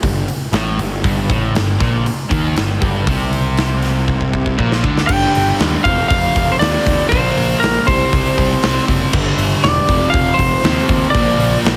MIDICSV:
0, 0, Header, 1, 7, 480
1, 0, Start_track
1, 0, Key_signature, -2, "minor"
1, 0, Tempo, 505051
1, 990, Time_signature, 4, 2, 24, 8
1, 11182, End_track
2, 0, Start_track
2, 0, Title_t, "Lead electric guitar"
2, 0, Program_c, 0, 29
2, 4821, Note_on_c, 0, 79, 97
2, 5278, Note_off_c, 0, 79, 0
2, 5550, Note_on_c, 0, 77, 105
2, 5770, Note_off_c, 0, 77, 0
2, 5781, Note_on_c, 0, 77, 115
2, 6194, Note_on_c, 0, 72, 73
2, 6219, Note_off_c, 0, 77, 0
2, 6263, Note_off_c, 0, 72, 0
2, 6266, Note_on_c, 0, 74, 101
2, 6734, Note_off_c, 0, 74, 0
2, 6737, Note_on_c, 0, 72, 93
2, 7221, Note_on_c, 0, 70, 85
2, 7244, Note_off_c, 0, 72, 0
2, 7478, Note_off_c, 0, 70, 0
2, 7478, Note_on_c, 0, 72, 102
2, 8399, Note_off_c, 0, 72, 0
2, 9159, Note_on_c, 0, 74, 101
2, 9597, Note_on_c, 0, 77, 107
2, 9650, Note_off_c, 0, 74, 0
2, 9828, Note_on_c, 0, 72, 103
2, 9862, Note_off_c, 0, 77, 0
2, 10547, Note_off_c, 0, 72, 0
2, 10551, Note_on_c, 0, 74, 75
2, 11014, Note_off_c, 0, 74, 0
2, 11182, End_track
3, 0, Start_track
3, 0, Title_t, "Overdriven electric guitar"
3, 0, Program_c, 1, 29
3, 44, Note_on_c, 1, 43, 72
3, 228, Note_off_c, 1, 43, 0
3, 517, Note_on_c, 1, 45, 105
3, 747, Note_off_c, 1, 45, 0
3, 758, Note_on_c, 1, 43, 64
3, 946, Note_off_c, 1, 43, 0
3, 990, Note_on_c, 1, 43, 102
3, 1224, Note_off_c, 1, 43, 0
3, 1244, Note_on_c, 1, 45, 88
3, 1465, Note_on_c, 1, 43, 76
3, 1472, Note_off_c, 1, 45, 0
3, 1661, Note_off_c, 1, 43, 0
3, 1711, Note_on_c, 1, 46, 90
3, 1946, Note_off_c, 1, 46, 0
3, 2186, Note_on_c, 1, 51, 90
3, 2424, Note_off_c, 1, 51, 0
3, 2434, Note_on_c, 1, 43, 69
3, 2628, Note_off_c, 1, 43, 0
3, 2671, Note_on_c, 1, 43, 94
3, 2908, Note_off_c, 1, 43, 0
3, 2920, Note_on_c, 1, 48, 94
3, 4351, Note_off_c, 1, 48, 0
3, 4354, Note_on_c, 1, 46, 98
3, 4591, Note_off_c, 1, 46, 0
3, 4604, Note_on_c, 1, 50, 81
3, 4836, Note_off_c, 1, 50, 0
3, 4838, Note_on_c, 1, 43, 77
3, 4847, Note_on_c, 1, 50, 91
3, 4861, Note_on_c, 1, 55, 102
3, 5546, Note_off_c, 1, 43, 0
3, 5551, Note_off_c, 1, 50, 0
3, 5558, Note_off_c, 1, 55, 0
3, 5566, Note_on_c, 1, 41, 84
3, 5576, Note_on_c, 1, 48, 98
3, 5584, Note_on_c, 1, 53, 96
3, 6267, Note_off_c, 1, 41, 0
3, 6275, Note_off_c, 1, 48, 0
3, 6279, Note_off_c, 1, 53, 0
3, 6279, Note_on_c, 1, 41, 78
3, 6296, Note_on_c, 1, 48, 85
3, 6306, Note_on_c, 1, 53, 83
3, 6746, Note_off_c, 1, 41, 0
3, 6754, Note_off_c, 1, 48, 0
3, 6757, Note_off_c, 1, 53, 0
3, 6759, Note_on_c, 1, 46, 89
3, 6768, Note_on_c, 1, 53, 92
3, 6776, Note_on_c, 1, 58, 96
3, 7465, Note_off_c, 1, 46, 0
3, 7469, Note_off_c, 1, 53, 0
3, 7472, Note_on_c, 1, 48, 79
3, 7473, Note_off_c, 1, 58, 0
3, 7491, Note_on_c, 1, 55, 96
3, 7499, Note_on_c, 1, 60, 83
3, 8180, Note_off_c, 1, 48, 0
3, 8190, Note_off_c, 1, 55, 0
3, 8193, Note_off_c, 1, 60, 0
3, 8202, Note_on_c, 1, 48, 79
3, 8210, Note_on_c, 1, 55, 82
3, 8223, Note_on_c, 1, 60, 90
3, 8664, Note_off_c, 1, 48, 0
3, 8668, Note_off_c, 1, 55, 0
3, 8670, Note_on_c, 1, 43, 82
3, 8675, Note_off_c, 1, 60, 0
3, 8686, Note_on_c, 1, 50, 96
3, 8688, Note_on_c, 1, 55, 101
3, 9377, Note_off_c, 1, 43, 0
3, 9385, Note_off_c, 1, 50, 0
3, 9385, Note_on_c, 1, 41, 87
3, 9386, Note_off_c, 1, 55, 0
3, 9397, Note_on_c, 1, 48, 92
3, 9406, Note_on_c, 1, 53, 104
3, 10093, Note_off_c, 1, 41, 0
3, 10098, Note_off_c, 1, 48, 0
3, 10103, Note_off_c, 1, 53, 0
3, 10106, Note_on_c, 1, 41, 83
3, 10117, Note_on_c, 1, 48, 97
3, 10126, Note_on_c, 1, 53, 81
3, 10573, Note_off_c, 1, 41, 0
3, 10578, Note_off_c, 1, 48, 0
3, 10583, Note_off_c, 1, 53, 0
3, 10592, Note_on_c, 1, 46, 94
3, 10604, Note_on_c, 1, 53, 97
3, 10616, Note_on_c, 1, 58, 102
3, 11182, Note_off_c, 1, 46, 0
3, 11182, Note_off_c, 1, 53, 0
3, 11182, Note_off_c, 1, 58, 0
3, 11182, End_track
4, 0, Start_track
4, 0, Title_t, "Picked electric bass"
4, 0, Program_c, 2, 34
4, 24, Note_on_c, 2, 31, 73
4, 249, Note_off_c, 2, 31, 0
4, 496, Note_on_c, 2, 33, 94
4, 726, Note_off_c, 2, 33, 0
4, 742, Note_on_c, 2, 31, 83
4, 970, Note_off_c, 2, 31, 0
4, 989, Note_on_c, 2, 31, 98
4, 1214, Note_off_c, 2, 31, 0
4, 1230, Note_on_c, 2, 33, 99
4, 1455, Note_off_c, 2, 33, 0
4, 1463, Note_on_c, 2, 31, 74
4, 1691, Note_off_c, 2, 31, 0
4, 1710, Note_on_c, 2, 34, 87
4, 1936, Note_off_c, 2, 34, 0
4, 2191, Note_on_c, 2, 39, 88
4, 2417, Note_off_c, 2, 39, 0
4, 2437, Note_on_c, 2, 31, 75
4, 2661, Note_off_c, 2, 31, 0
4, 2670, Note_on_c, 2, 31, 97
4, 2897, Note_off_c, 2, 31, 0
4, 2917, Note_on_c, 2, 36, 100
4, 4323, Note_off_c, 2, 36, 0
4, 4353, Note_on_c, 2, 34, 92
4, 4581, Note_off_c, 2, 34, 0
4, 4595, Note_on_c, 2, 38, 90
4, 4822, Note_off_c, 2, 38, 0
4, 4839, Note_on_c, 2, 31, 101
4, 4986, Note_off_c, 2, 31, 0
4, 5092, Note_on_c, 2, 31, 86
4, 5235, Note_off_c, 2, 31, 0
4, 5324, Note_on_c, 2, 39, 85
4, 5470, Note_off_c, 2, 39, 0
4, 5556, Note_on_c, 2, 29, 85
4, 5704, Note_off_c, 2, 29, 0
4, 5802, Note_on_c, 2, 29, 86
4, 5948, Note_off_c, 2, 29, 0
4, 6043, Note_on_c, 2, 29, 90
4, 6189, Note_off_c, 2, 29, 0
4, 6281, Note_on_c, 2, 39, 93
4, 6427, Note_off_c, 2, 39, 0
4, 6517, Note_on_c, 2, 39, 95
4, 6664, Note_off_c, 2, 39, 0
4, 6762, Note_on_c, 2, 34, 105
4, 6908, Note_off_c, 2, 34, 0
4, 7004, Note_on_c, 2, 34, 94
4, 7149, Note_off_c, 2, 34, 0
4, 7241, Note_on_c, 2, 34, 79
4, 7387, Note_off_c, 2, 34, 0
4, 7487, Note_on_c, 2, 36, 92
4, 7631, Note_off_c, 2, 36, 0
4, 7724, Note_on_c, 2, 36, 94
4, 7868, Note_off_c, 2, 36, 0
4, 7960, Note_on_c, 2, 36, 93
4, 8105, Note_off_c, 2, 36, 0
4, 8201, Note_on_c, 2, 36, 95
4, 8346, Note_off_c, 2, 36, 0
4, 8436, Note_on_c, 2, 30, 92
4, 8582, Note_off_c, 2, 30, 0
4, 8682, Note_on_c, 2, 31, 101
4, 8826, Note_off_c, 2, 31, 0
4, 8906, Note_on_c, 2, 31, 93
4, 9055, Note_off_c, 2, 31, 0
4, 9155, Note_on_c, 2, 28, 82
4, 9301, Note_off_c, 2, 28, 0
4, 9394, Note_on_c, 2, 29, 100
4, 9540, Note_off_c, 2, 29, 0
4, 9636, Note_on_c, 2, 29, 91
4, 9781, Note_off_c, 2, 29, 0
4, 9872, Note_on_c, 2, 29, 102
4, 10018, Note_off_c, 2, 29, 0
4, 10108, Note_on_c, 2, 39, 89
4, 10255, Note_off_c, 2, 39, 0
4, 10349, Note_on_c, 2, 39, 104
4, 10495, Note_off_c, 2, 39, 0
4, 10592, Note_on_c, 2, 34, 105
4, 10737, Note_off_c, 2, 34, 0
4, 10815, Note_on_c, 2, 34, 99
4, 10965, Note_off_c, 2, 34, 0
4, 11063, Note_on_c, 2, 34, 77
4, 11182, Note_off_c, 2, 34, 0
4, 11182, End_track
5, 0, Start_track
5, 0, Title_t, "Muted overdriven electric guitar strokes"
5, 1955, Note_on_c, 9, 29, 55
5, 2050, Note_off_c, 9, 29, 0
5, 11182, End_track
6, 0, Start_track
6, 0, Title_t, "Muted picked electric bass strokes"
6, 1944, Note_on_c, 9, 29, 39
6, 2039, Note_off_c, 9, 29, 0
6, 11182, End_track
7, 0, Start_track
7, 0, Title_t, "Drums"
7, 29, Note_on_c, 9, 36, 96
7, 30, Note_on_c, 9, 46, 75
7, 124, Note_off_c, 9, 36, 0
7, 125, Note_off_c, 9, 46, 0
7, 269, Note_on_c, 9, 46, 56
7, 364, Note_off_c, 9, 46, 0
7, 503, Note_on_c, 9, 46, 65
7, 514, Note_on_c, 9, 38, 94
7, 598, Note_off_c, 9, 46, 0
7, 609, Note_off_c, 9, 38, 0
7, 752, Note_on_c, 9, 46, 56
7, 847, Note_off_c, 9, 46, 0
7, 990, Note_on_c, 9, 36, 94
7, 997, Note_on_c, 9, 46, 64
7, 1085, Note_off_c, 9, 36, 0
7, 1092, Note_off_c, 9, 46, 0
7, 1233, Note_on_c, 9, 36, 107
7, 1239, Note_on_c, 9, 46, 52
7, 1328, Note_off_c, 9, 36, 0
7, 1334, Note_off_c, 9, 46, 0
7, 1476, Note_on_c, 9, 46, 66
7, 1486, Note_on_c, 9, 38, 98
7, 1571, Note_off_c, 9, 46, 0
7, 1581, Note_off_c, 9, 38, 0
7, 1715, Note_on_c, 9, 36, 100
7, 1720, Note_on_c, 9, 46, 46
7, 1730, Note_on_c, 9, 38, 32
7, 1810, Note_off_c, 9, 36, 0
7, 1815, Note_off_c, 9, 46, 0
7, 1825, Note_off_c, 9, 38, 0
7, 1960, Note_on_c, 9, 46, 68
7, 2055, Note_off_c, 9, 46, 0
7, 2195, Note_on_c, 9, 36, 105
7, 2199, Note_on_c, 9, 46, 49
7, 2290, Note_off_c, 9, 36, 0
7, 2294, Note_off_c, 9, 46, 0
7, 2438, Note_on_c, 9, 46, 59
7, 2448, Note_on_c, 9, 38, 105
7, 2533, Note_off_c, 9, 46, 0
7, 2543, Note_off_c, 9, 38, 0
7, 2678, Note_on_c, 9, 46, 59
7, 2679, Note_on_c, 9, 36, 108
7, 2773, Note_off_c, 9, 46, 0
7, 2774, Note_off_c, 9, 36, 0
7, 2919, Note_on_c, 9, 36, 98
7, 2919, Note_on_c, 9, 46, 71
7, 3014, Note_off_c, 9, 36, 0
7, 3014, Note_off_c, 9, 46, 0
7, 3162, Note_on_c, 9, 46, 57
7, 3257, Note_off_c, 9, 46, 0
7, 3397, Note_on_c, 9, 46, 71
7, 3408, Note_on_c, 9, 38, 97
7, 3492, Note_off_c, 9, 46, 0
7, 3503, Note_off_c, 9, 38, 0
7, 3635, Note_on_c, 9, 46, 57
7, 3645, Note_on_c, 9, 38, 33
7, 3730, Note_off_c, 9, 46, 0
7, 3740, Note_off_c, 9, 38, 0
7, 3878, Note_on_c, 9, 36, 61
7, 3973, Note_off_c, 9, 36, 0
7, 3999, Note_on_c, 9, 36, 55
7, 4094, Note_off_c, 9, 36, 0
7, 4120, Note_on_c, 9, 36, 68
7, 4215, Note_off_c, 9, 36, 0
7, 4238, Note_on_c, 9, 36, 64
7, 4333, Note_off_c, 9, 36, 0
7, 4360, Note_on_c, 9, 36, 72
7, 4455, Note_off_c, 9, 36, 0
7, 4488, Note_on_c, 9, 38, 82
7, 4583, Note_off_c, 9, 38, 0
7, 4599, Note_on_c, 9, 36, 95
7, 4694, Note_off_c, 9, 36, 0
7, 4728, Note_on_c, 9, 38, 81
7, 4823, Note_off_c, 9, 38, 0
7, 4835, Note_on_c, 9, 49, 110
7, 4840, Note_on_c, 9, 36, 107
7, 4930, Note_off_c, 9, 49, 0
7, 4935, Note_off_c, 9, 36, 0
7, 5083, Note_on_c, 9, 46, 59
7, 5178, Note_off_c, 9, 46, 0
7, 5318, Note_on_c, 9, 46, 76
7, 5329, Note_on_c, 9, 38, 105
7, 5413, Note_off_c, 9, 46, 0
7, 5424, Note_off_c, 9, 38, 0
7, 5555, Note_on_c, 9, 46, 64
7, 5561, Note_on_c, 9, 36, 88
7, 5650, Note_off_c, 9, 46, 0
7, 5656, Note_off_c, 9, 36, 0
7, 5800, Note_on_c, 9, 46, 76
7, 5802, Note_on_c, 9, 36, 115
7, 5896, Note_off_c, 9, 46, 0
7, 5898, Note_off_c, 9, 36, 0
7, 6041, Note_on_c, 9, 46, 63
7, 6043, Note_on_c, 9, 36, 93
7, 6136, Note_off_c, 9, 46, 0
7, 6139, Note_off_c, 9, 36, 0
7, 6284, Note_on_c, 9, 46, 82
7, 6295, Note_on_c, 9, 38, 98
7, 6379, Note_off_c, 9, 46, 0
7, 6390, Note_off_c, 9, 38, 0
7, 6416, Note_on_c, 9, 38, 36
7, 6511, Note_off_c, 9, 38, 0
7, 6525, Note_on_c, 9, 36, 100
7, 6527, Note_on_c, 9, 46, 67
7, 6620, Note_off_c, 9, 36, 0
7, 6622, Note_off_c, 9, 46, 0
7, 6767, Note_on_c, 9, 36, 107
7, 6772, Note_on_c, 9, 46, 82
7, 6862, Note_off_c, 9, 36, 0
7, 6867, Note_off_c, 9, 46, 0
7, 7008, Note_on_c, 9, 46, 72
7, 7103, Note_off_c, 9, 46, 0
7, 7250, Note_on_c, 9, 46, 89
7, 7260, Note_on_c, 9, 38, 104
7, 7345, Note_off_c, 9, 46, 0
7, 7355, Note_off_c, 9, 38, 0
7, 7487, Note_on_c, 9, 36, 94
7, 7492, Note_on_c, 9, 46, 64
7, 7582, Note_off_c, 9, 36, 0
7, 7587, Note_off_c, 9, 46, 0
7, 7726, Note_on_c, 9, 36, 121
7, 7728, Note_on_c, 9, 46, 85
7, 7821, Note_off_c, 9, 36, 0
7, 7823, Note_off_c, 9, 46, 0
7, 7964, Note_on_c, 9, 36, 93
7, 7965, Note_on_c, 9, 46, 74
7, 8059, Note_off_c, 9, 36, 0
7, 8060, Note_off_c, 9, 46, 0
7, 8198, Note_on_c, 9, 46, 78
7, 8209, Note_on_c, 9, 38, 102
7, 8293, Note_off_c, 9, 46, 0
7, 8304, Note_off_c, 9, 38, 0
7, 8333, Note_on_c, 9, 38, 35
7, 8429, Note_off_c, 9, 38, 0
7, 8442, Note_on_c, 9, 36, 99
7, 8446, Note_on_c, 9, 46, 73
7, 8538, Note_off_c, 9, 36, 0
7, 8541, Note_off_c, 9, 46, 0
7, 8680, Note_on_c, 9, 57, 103
7, 8681, Note_on_c, 9, 36, 105
7, 8775, Note_off_c, 9, 57, 0
7, 8776, Note_off_c, 9, 36, 0
7, 8918, Note_on_c, 9, 46, 65
7, 9013, Note_off_c, 9, 46, 0
7, 9156, Note_on_c, 9, 46, 74
7, 9167, Note_on_c, 9, 38, 101
7, 9251, Note_off_c, 9, 46, 0
7, 9262, Note_off_c, 9, 38, 0
7, 9397, Note_on_c, 9, 36, 89
7, 9403, Note_on_c, 9, 46, 64
7, 9492, Note_off_c, 9, 36, 0
7, 9498, Note_off_c, 9, 46, 0
7, 9634, Note_on_c, 9, 46, 79
7, 9635, Note_on_c, 9, 36, 124
7, 9729, Note_off_c, 9, 46, 0
7, 9730, Note_off_c, 9, 36, 0
7, 9874, Note_on_c, 9, 36, 85
7, 9876, Note_on_c, 9, 46, 67
7, 9969, Note_off_c, 9, 36, 0
7, 9971, Note_off_c, 9, 46, 0
7, 10111, Note_on_c, 9, 46, 70
7, 10122, Note_on_c, 9, 38, 111
7, 10206, Note_off_c, 9, 46, 0
7, 10217, Note_off_c, 9, 38, 0
7, 10241, Note_on_c, 9, 38, 37
7, 10336, Note_off_c, 9, 38, 0
7, 10346, Note_on_c, 9, 46, 65
7, 10352, Note_on_c, 9, 36, 101
7, 10441, Note_off_c, 9, 46, 0
7, 10447, Note_off_c, 9, 36, 0
7, 10593, Note_on_c, 9, 36, 113
7, 10594, Note_on_c, 9, 46, 81
7, 10688, Note_off_c, 9, 36, 0
7, 10689, Note_off_c, 9, 46, 0
7, 10835, Note_on_c, 9, 46, 67
7, 10930, Note_off_c, 9, 46, 0
7, 11076, Note_on_c, 9, 46, 82
7, 11086, Note_on_c, 9, 38, 112
7, 11171, Note_off_c, 9, 46, 0
7, 11181, Note_off_c, 9, 38, 0
7, 11182, End_track
0, 0, End_of_file